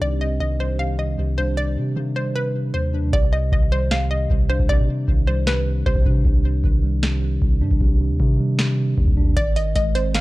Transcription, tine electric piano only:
0.00 0.02 C3 medium
0.00 0.20 C3 medium
0.00 0.41 D#3 medium
0.00 0.60 G3 medium
0.00 1.38 D4 medium
0.21 0.79 C3 medium
0.41 1.38 D#3 medium
0.60 1.57 G3 medium
0.80 0.98 C3 medium
0.99 1.17 C3 medium
1.19 1.57 C3 medium
1.38 2.35 D4 medium
1.58 1.76 C3 medium
1.77 2.34 C3 medium
1.97 2.94 D#3 medium
2.16 3.13 G3 medium
2.35 2.54 C3 medium
2.55 2.73 C3 medium
2.74 3.12 C3 medium
2.94 3.13 D4 medium
3.13 3.32 C3 medium
3.33 3.90 C3 medium
3.52 4.50 D#3 medium
3.72 4.69 G3 medium
3.91 4.10 C3 medium
4.11 4.29 C3 medium
4.30 4.68 C3 medium
4.50 5.47 D4 medium
4.69 4.88 C3 medium
4.89 5.46 C3 medium
5.08 6.05 D#3 medium
5.28 6.25 G3 medium
5.47 5.65 C3 medium
5.67 5.85 C3 medium
5.86 6.24 C3 medium
6.05 7.03 D4 medium
6.25 6.43 C3 medium
6.44 7.02 C3 medium
6.64 7.61 D#3 medium
6.83 7.81 G3 medium
7.03 7.21 C3 medium
7.22 7.41 C3 medium
7.42 7.80 C3 medium
7.61 8.59 D4 medium
7.81 7.99 C3 medium
8.00 8.58 C3 medium
8.20 9.17 D#3 medium
8.39 9.37 G3 medium
8.59 8.77 C3 medium
8.78 8.97 C3 medium
8.98 9.37 C3 medium
9.17 9.37 D4 medium
9.37 9.55 D#3 medium
9.56 10.13 D#3 medium
9.76 10.21 G#3 medium
9.95 10.21 C4 medium
10.15 10.21 D#3 medium

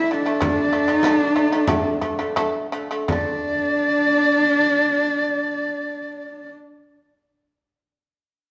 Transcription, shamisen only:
0.11 0.23 D3 medium
0.11 0.24 A3 medium
0.26 0.38 D3 medium
0.26 0.39 A3 medium
0.40 0.66 D3 medium
0.40 0.66 A3 medium
0.73 0.85 D3 medium
0.73 0.85 A3 medium
0.88 1.01 D3 loud
0.88 1.01 A3 loud
1.04 1.30 D3 loud
1.04 1.30 A3 loud
1.36 1.49 D3 medium
1.36 1.49 A3 medium
1.52 1.66 D3 medium
1.52 1.66 A3 medium
1.68 1.95 D3 loud
1.68 1.96 A3 loud
2.01 2.16 D3 medium
2.01 2.16 A3 medium
2.19 2.33 D3 medium
2.19 2.33 A3 medium
2.36 2.65 D3 loud
2.36 2.65 A3 loud
2.72 2.87 D3 medium
2.72 2.87 A3 medium
2.91 3.06 D3 medium
2.91 3.06 A3 medium
3.08 6.49 D3 medium
3.12 6.53 A3 medium

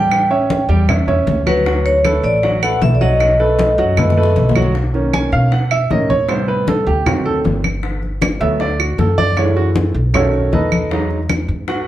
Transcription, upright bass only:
0.00 0.63 A1 medium
0.69 1.23 E2 loud
1.27 2.18 D2 loud
2.23 2.77 A1 medium
2.81 3.72 B1 loud
3.78 4.32 F#2 loud
4.36 5.26 B1 medium
5.32 5.86 B2 loud
5.90 6.81 A2 medium
6.86 7.40 D2 medium
7.44 8.35 G1 medium
8.41 8.95 D2 loud
8.98 9.89 F#2 medium
9.94 10.48 B1 medium
10.52 11.43 E2 medium
11.48 11.88 G#2 medium

